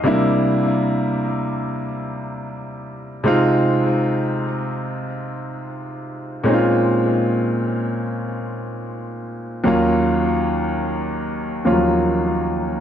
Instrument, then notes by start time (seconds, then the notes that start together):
grand piano
0.03 C3 G3 A#3 D4 E4
3.24 C3 G#3 C4 D#4 F4
6.44 A#2 G#3 C4 C#4 D#4
6.54 F4
9.64 D#2 F#3 A#3 C#4 F4
11.65 D#2 F3 A#3 C#4 F4
11.72 F#3